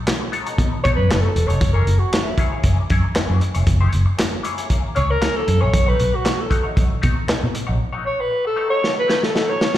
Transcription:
0.07 muted clean electric guitar stroke, snare, clap, closed hi-hat
0.21 muted clean electric guitar stroke
0.32 clean electric guitar B3 D#4 A4 C#5, closed hi-hat
0.46 clean electric guitar B3 D#4 A4 C#5, closed hi-hat
0.58 fingered electric bass B2, clean electric guitar B3 D#4 A4 C#5, kick, closed hi-hat
0.72 muted clean electric guitar stroke
0.84 fingered electric bass B2, clean electric guitar B3 D#4 A4 C#5, alto saxophone C#5, kick, closed hi-hat
0.96 fingered electric bass F#2, alto saxophone B4, muted clean electric guitar stroke
1.09 fingered electric bass F#1, clean electric guitar B3 D#4 A4 C#5, snare, clap, closed hi-hat
1.20 alto saxophone A4
1.35 fingered electric bass E1, muted clean electric guitar stroke, closed hi-hat
1.47 fingered electric bass F1, clean electric guitar B3 D#4 A4 C#5, alto saxophone C#5, closed hi-hat
1.61 fingered electric bass F#1, kick, closed hi-hat
1.73 clean electric guitar A#3 E4 G#4 C#5, alto saxophone A#4
1.86 fingered electric bass F#1, muted clean electric guitar stroke, closed hi-hat
1.99 alto saxophone F#4, muted clean electric guitar stroke
2.13 muted clean electric guitar stroke, snare, clap, closed hi-hat
2.23 alto saxophone E4, muted clean electric guitar stroke
2.38 clean electric guitar A#3 E4 G#4 C#5, kick, closed hi-hat
2.52 clean electric guitar A#3 E4 G#4 C#5
2.63 fingered electric bass F#1, clean electric guitar A#3 E4 G#4 C#5, kick, closed hi-hat
2.79 muted clean electric guitar stroke
2.90 fingered electric bass F#2, clean electric guitar A#3 E4 G#4 C#5, kick, closed hi-hat
3.04 muted clean electric guitar stroke
3.15 clean electric guitar A#3 E4 G#4 C#5, snare, clap, closed hi-hat
3.30 fingered electric bass F#2
3.41 muted clean electric guitar stroke, closed hi-hat
3.54 fingered electric bass F1, clean electric guitar A#3 E4 G#4 C#5, closed hi-hat
3.67 fingered electric bass F#1, muted clean electric guitar stroke, kick, closed hi-hat
3.81 clean electric guitar A#3 E4 G#4 C#5
3.92 fingered electric bass F#1, muted clean electric guitar stroke, closed hi-hat
4.06 muted clean electric guitar stroke
4.17 muted clean electric guitar stroke, snare, clap, closed hi-hat
4.32 muted clean electric guitar stroke
4.43 clean electric guitar A#3 E4 G#4 C#5, closed hi-hat
4.58 clean electric guitar A#3 E4 G#4 C#5, closed hi-hat
4.69 clean electric guitar A#3 E4 G#4 C#5, kick, closed hi-hat
4.83 muted clean electric guitar stroke
4.95 fingered electric bass C#2, clean electric guitar A#3 E4 G#4 C#5, alto saxophone C#5, closed hi-hat
5.09 alto saxophone A#4, muted clean electric guitar stroke
5.21 clean electric guitar A#3 E4 G#4 C#5, snare, clap, closed hi-hat
5.36 alto saxophone A4
5.47 fingered electric bass F#2, muted clean electric guitar stroke, closed hi-hat
5.61 fingered electric bass A#1, clean electric guitar A#3 E4 G#4 C#5, alto saxophone C#5
5.74 fingered electric bass B1, kick, closed hi-hat
5.86 clean electric guitar A3 D#4 F#4 C#5, alto saxophone B4
5.99 fingered electric bass B1, muted clean electric guitar stroke, closed hi-hat
6.12 alto saxophone F#4, muted clean electric guitar stroke
6.25 muted clean electric guitar stroke, snare, clap, closed hi-hat
6.38 alto saxophone A4, muted clean electric guitar stroke
6.50 clean electric guitar A3 D#4 F#4 C#5, kick, closed hi-hat
6.63 clean electric guitar A3 D#4 F#4 C#5
6.76 fingered electric bass B1, clean electric guitar A3 D#4 F#4 C#5, kick, closed hi-hat
6.90 muted clean electric guitar stroke
7.02 fingered electric bass B2, clean electric guitar A3 D#4 F#4 C#5, kick, closed hi-hat
7.16 muted clean electric guitar stroke
7.28 clean electric guitar A3 D#4 F#4 C#5, snare, clap, closed hi-hat
7.43 fingered electric bass B2
7.54 muted clean electric guitar stroke, closed hi-hat
7.67 fingered electric bass A#1, clean electric guitar A3 D#4 F#4 C#5
7.79 muted clean electric guitar stroke
7.93 clean electric guitar A3 D#4 F#4 C#5
8.05 alto saxophone C#5, muted clean electric guitar stroke
8.19 alto saxophone B4, muted clean electric guitar stroke
8.31 muted clean electric guitar stroke
8.45 alto saxophone A4, muted clean electric guitar stroke
8.56 clean electric guitar A3 D#4 F#4 C#5
8.69 clean electric guitar A3 D#4 F#4 C#5, alto saxophone C#5
8.82 clean electric guitar A3 D#4 F#4 C#5, snare
8.96 alto saxophone B4, muted clean electric guitar stroke
9.08 clean electric guitar A3 D#4 F#4 C#5, snare
9.22 alto saxophone A4, muted clean electric guitar stroke, snare
9.34 clean electric guitar A3 D#4 F#4 C#5, snare
9.49 alto saxophone C#5
9.61 muted clean electric guitar stroke, snare
9.74 clean electric guitar C#5, snare

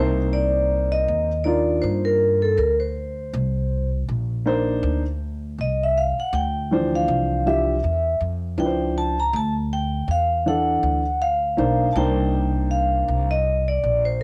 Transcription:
Already playing: upright bass C2, upright piano A#3 C4 D#4 E5 A5, vibraphone C5
0.00 upright piano C5
0.33 vibraphone D5
0.92 vibraphone D#5
1.08 upright bass D#2
1.44 upright piano A#3 D4 D#4 F4, vibraphone D5
1.82 upright bass G2, vibraphone C5
2.05 vibraphone A#4
2.42 vibraphone A4
2.58 upright bass D2, vibraphone A#4
2.80 vibraphone C5
3.33 upright bass C2
4.09 upright bass A#1
4.46 upright piano A#3 D4 D#4 C5
4.83 upright bass D2
5.58 upright bass C2, vibraphone D#5
5.83 vibraphone E5
5.98 vibraphone F5
6.19 vibraphone F#5, muted upright bass stroke
6.33 upright bass D2, vibraphone G5
6.71 upright piano E3 F3 D4 C5
6.95 vibraphone F5
7.08 upright bass C2
7.46 upright piano F3 D4 E4 G4, vibraphone E5
7.84 upright bass E2
8.20 upright bass F2
8.58 upright bass C#2, upright piano F3 D4 E4 B4, vibraphone G5
8.66 upright piano C5
8.98 vibraphone A5
9.20 vibraphone A#5
9.33 upright bass D2, vibraphone A5
9.73 vibraphone G5
10.08 upright bass E2, vibraphone F5
10.46 upright piano E3 D4 E4 A4, vibraphone F#5
10.83 upright bass D2
11.22 vibraphone F5
11.57 upright bass B1, upright piano A#3 D4 D#4 C5
11.93 upright bass C2, upright piano A#3, vibraphone G5 A5
11.97 upright piano D4 D#4 C5
12.71 vibraphone F5
13.08 upright bass C2
13.31 vibraphone D#5
13.68 vibraphone D5
13.83 upright bass A#1
14.05 vibraphone C5

